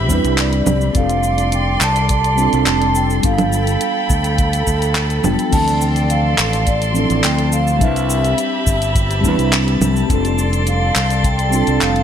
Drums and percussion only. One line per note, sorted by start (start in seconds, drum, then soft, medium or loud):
0.10 kick medium
0.10 shaker medium
0.25 closed hi-hat soft
0.25 shaker soft
0.38 clap medium
0.38 closed hi-hat medium
0.38 shaker soft
0.53 closed hi-hat soft
0.66 low conga medium
0.66 shaker medium
0.81 shaker soft
0.95 kick loud
0.95 closed hi-hat medium
0.95 shaker soft
1.10 closed hi-hat soft
1.10 shaker soft
1.23 shaker medium
1.38 closed hi-hat soft
1.38 shaker soft
1.52 closed hi-hat medium
1.52 shaker soft
1.81 clap medium
1.81 shaker medium
1.96 closed hi-hat soft
1.96 shaker soft
2.09 kick loud
2.09 closed hi-hat medium
2.09 shaker soft
2.24 closed hi-hat soft
2.24 shaker soft
2.38 shaker medium
2.53 closed hi-hat soft
2.53 shaker soft
2.66 clap medium
2.66 closed hi-hat medium
2.66 shaker soft
2.82 closed hi-hat soft
2.95 shaker medium
3.10 shaker soft
3.23 kick loud
3.23 closed hi-hat medium
3.23 shaker soft
3.38 closed hi-hat soft
3.38 low conga medium
3.38 shaker soft
3.53 shaker medium
3.67 closed hi-hat soft
3.67 shaker soft
3.81 closed hi-hat medium
3.81 shaker soft
4.10 kick loud
4.10 shaker medium
4.24 closed hi-hat soft
4.24 shaker soft
4.38 kick loud
4.38 closed hi-hat medium
4.38 shaker soft
4.53 closed hi-hat soft
4.53 shaker soft
4.67 kick medium
4.67 shaker medium
4.82 closed hi-hat soft
4.82 shaker soft
4.95 clap medium
4.95 closed hi-hat medium
4.95 shaker soft
5.10 closed hi-hat soft
5.10 shaker soft
5.24 low conga medium
5.24 shaker medium
5.39 closed hi-hat soft
5.39 shaker soft
5.53 kick loud
5.53 closed hi-hat medium
5.53 crash medium
5.53 shaker soft
5.68 closed hi-hat soft
5.68 shaker soft
5.81 shaker medium
5.96 closed hi-hat soft
5.96 shaker soft
6.10 closed hi-hat medium
6.10 shaker soft
6.38 clap medium
6.38 shaker medium
6.53 closed hi-hat soft
6.53 shaker soft
6.67 kick loud
6.67 closed hi-hat medium
6.67 shaker soft
6.82 closed hi-hat soft
6.82 shaker soft
6.95 shaker medium
7.10 closed hi-hat soft
7.10 shaker soft
7.24 clap medium
7.24 closed hi-hat medium
7.24 shaker soft
7.38 closed hi-hat soft
7.52 shaker medium
7.67 shaker soft
7.81 kick loud
7.81 closed hi-hat medium
7.81 shaker soft
7.96 closed hi-hat soft
7.96 shaker soft
8.10 shaker medium
8.25 closed hi-hat soft
8.25 shaker soft
8.38 closed hi-hat medium
8.38 shaker soft
8.67 kick loud
8.67 shaker medium
8.82 closed hi-hat soft
8.82 shaker soft
8.95 kick loud
8.95 closed hi-hat medium
8.95 shaker soft
9.11 closed hi-hat soft
9.11 shaker soft
9.24 kick medium
9.24 shaker medium
9.39 closed hi-hat soft
9.39 shaker soft
9.53 clap medium
9.53 closed hi-hat medium
9.53 shaker soft
9.68 closed hi-hat soft
9.82 low conga medium
9.82 shaker medium
9.96 shaker soft
10.10 kick loud
10.10 closed hi-hat medium
10.10 shaker soft
10.25 closed hi-hat soft
10.25 shaker soft
10.38 shaker medium
10.53 closed hi-hat soft
10.53 shaker soft
10.67 closed hi-hat medium
10.67 shaker soft
10.96 clap medium
10.96 shaker medium
11.10 closed hi-hat soft
11.10 shaker soft
11.24 kick loud
11.24 closed hi-hat medium
11.24 shaker soft
11.39 closed hi-hat soft
11.39 shaker soft
11.53 shaker medium
11.67 closed hi-hat soft
11.67 shaker soft
11.81 clap medium
11.81 closed hi-hat medium
11.81 shaker soft
11.96 closed hi-hat soft